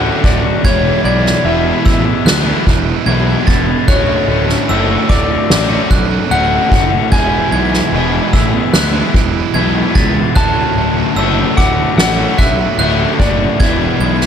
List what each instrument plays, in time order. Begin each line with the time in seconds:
Already playing: overdriven electric guitar D2 A2, distorted electric guitar D3 A3 C#4 F#4, electric slide guitar F#5, glockenspiel F#6
0.03 overdriven electric guitar D3 A3 C#4 F#4
0.23 picked electric bass D1, overdriven electric guitar D3 A3 C#4 F#4, electric slide guitar D5, kick, crash
0.44 overdriven electric guitar D3 A3 C#4 F#4, muted distorted electric guitar stroke
0.64 picked electric bass E1, overdriven electric guitar E2 B2 E3 G#3 B3 E4, electric slide guitar C#5, glockenspiel G#6, kick, crash
1.04 picked electric bass B1, overdriven electric guitar E3 G#3 B3 E4, electric slide guitar D5, glockenspiel G#6, crash
1.24 distorted electric guitar E3 G#3 B3 E4, snare
1.45 picked electric bass E1, overdriven electric guitar E2 B2 E3 G#3 B3 E4, electric slide guitar E5, crash
1.64 overdriven electric guitar E3 G#3 B3 E4
1.85 picked electric bass A1, overdriven electric guitar E3 G#3 B3 E4, glockenspiel E6, kick, crash
2.05 overdriven electric guitar E3 G#3 B3 E4, muted distorted electric guitar stroke
2.26 picked electric bass D2, glockenspiel F#6, snare, crash
2.46 overdriven electric guitar E3 G#3 B3 E4
2.66 picked electric bass E1, distorted electric guitar E3 G#3 B3 E4, muted overdriven electric guitar stroke, kick, crash
2.86 distorted electric guitar E3 G#3 B3 E4
3.06 picked electric bass B1, overdriven electric guitar E2 B2 E3 G#3 B3 E4, glockenspiel G#6, crash
3.27 overdriven electric guitar E3 G#3 B3 E4
3.46 picked electric bass E1, overdriven electric guitar E3 G#3 B3 E4, glockenspiel A6, kick, crash
3.67 overdriven electric guitar E3 G#3 B3 E4, muted distorted electric guitar stroke
3.87 picked electric bass D1, overdriven electric guitar D2 A2 D3 A3 C#4 F#4, electric slide guitar C#5, glockenspiel F#6, kick, crash
4.27 picked electric bass D1, overdriven electric guitar D3 A3 C#4 F#4, crash
4.48 distorted electric guitar D3 A3 C#4 F#4, snare
4.68 picked electric bass F#1, overdriven electric guitar D2 A2 D3 A3 C#4 F#4, glockenspiel E6, crash
4.88 overdriven electric guitar D3 A3 C#4 F#4
5.08 picked electric bass D1, overdriven electric guitar D3 A3 C#4 F#4, electric slide guitar D5, glockenspiel D6, kick, crash
5.28 overdriven electric guitar D3 A3 C#4 F#4, muted distorted electric guitar stroke
5.50 picked electric bass A1, snare, crash
5.69 overdriven electric guitar D3 A3 C#4 F#4
5.90 picked electric bass B1, distorted electric guitar D3 A3 C#4 F#4, glockenspiel F#6, muted overdriven electric guitar stroke, kick, crash
6.10 distorted electric guitar D3 A3 C#4 F#4
6.30 picked electric bass D1, overdriven electric guitar D2 A2 D3 A3 C#4 F#4, electric slide guitar F#5, glockenspiel F#6, crash
6.50 overdriven electric guitar D3 A3 C#4 F#4
6.71 picked electric bass F#1, overdriven electric guitar D3 A3 C#4 F#4, kick, crash
6.91 overdriven electric guitar D3 A3 C#4 F#4, muted distorted electric guitar stroke
7.11 picked electric bass E1, overdriven electric guitar E2 B2 E3 G#3 B3 E4, electric slide guitar G#5, glockenspiel G#6, kick, crash
7.51 picked electric bass B1, overdriven electric guitar E3 G#3 B3 E4, glockenspiel G#6, crash
7.72 distorted electric guitar E3 G#3 B3 E4, snare
7.92 picked electric bass E1, overdriven electric guitar E2 B2 E3 G#3 B3 E4, crash
8.12 overdriven electric guitar E3 G#3 B3 E4
8.32 picked electric bass A1, overdriven electric guitar E3 G#3 B3 E4, glockenspiel E6, kick, crash
8.52 overdriven electric guitar E3 G#3 B3 E4, muted distorted electric guitar stroke
8.73 picked electric bass D2, glockenspiel F#6, snare, crash
8.93 overdriven electric guitar E3 G#3 B3 E4
9.14 picked electric bass E1, distorted electric guitar E3 G#3 B3 E4, muted overdriven electric guitar stroke, kick, crash
9.34 distorted electric guitar E3 G#3 B3 E4
9.54 picked electric bass B1, overdriven electric guitar E2 B2 E3 G#3 B3 E4, glockenspiel G#6, crash
9.74 overdriven electric guitar E3 G#3 B3 E4
9.95 picked electric bass C#2, overdriven electric guitar E3 G#3 B3 E4, glockenspiel A6, kick, crash
10.14 overdriven electric guitar E3 G#3 B3 E4, muted distorted electric guitar stroke
10.34 picked electric bass D1, overdriven electric guitar D2 A2 D3 A3 C#4 F#4, electric slide guitar A5, glockenspiel F#6, kick, crash
10.76 picked electric bass D1, overdriven electric guitar D3 A3 C#4 F#4, crash
10.96 distorted electric guitar D3 A3 C#4 F#4
11.16 picked electric bass F#1, overdriven electric guitar D2 A2 D3 A3 C#4 F#4, glockenspiel E6, crash
11.37 overdriven electric guitar D3 A3 C#4 F#4
11.57 picked electric bass D1, overdriven electric guitar D3 A3 C#4 F#4, electric slide guitar F#5, glockenspiel D6, kick, crash
11.78 overdriven electric guitar D3 A3 C#4 F#4, muted distorted electric guitar stroke
11.98 picked electric bass A1, electric slide guitar F#5, snare, crash
12.18 overdriven electric guitar D3 A3 C#4 F#4
12.38 picked electric bass B1, distorted electric guitar D3 A3 C#4 F#4, electric slide guitar E5, glockenspiel F#6, muted overdriven electric guitar stroke, kick, crash
12.58 distorted electric guitar D3 A3 C#4 F#4
12.78 picked electric bass D1, overdriven electric guitar D2 A2 D3 A3 C#4 F#4, glockenspiel F#6, crash
12.99 overdriven electric guitar D3 A3 C#4 F#4
13.19 picked electric bass F#1, overdriven electric guitar D3 A3 C#4 F#4, electric slide guitar D5, kick, crash
13.40 overdriven electric guitar D3 A3 C#4 F#4, muted distorted electric guitar stroke
13.60 picked electric bass E1, overdriven electric guitar E2 B2 E3 G#3 B3 E4, glockenspiel G#6, kick, crash
14.00 picked electric bass B1, overdriven electric guitar E3 G#3 B3 E4, glockenspiel G#6, crash
14.21 distorted electric guitar E3 G#3 B3 E4, snare